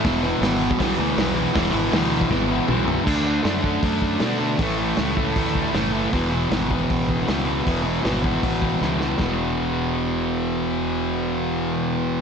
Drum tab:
CC |----------------|----------------|x---------------|----------------|
HH |o---o---o---o---|o---o-----------|----o---o---o---|o---o---o---o---|
SD |o---o---o---o---|o---o---o-------|----o-------o---|----o-------o---|
T2 |----------------|------------o---|----------------|----------------|
FT |----------------|--------------o-|----------------|----------------|
BD |o------oo-------|o------oo-------|o-----o-o-o-----|o-----o-o-o-----|

CC |----------------|----------------|----------------|----------------|
HH |o---o---o---o---|o---o---o-------|----------------|----------------|
SD |----o-------o---|----o-------o-o-|o---------------|----------------|
T2 |----------------|----------------|----------------|----------------|
FT |----------------|----------------|----------------|----------------|
BD |o-----o-o-o-----|o-----o-o-o-----|o---------------|----------------|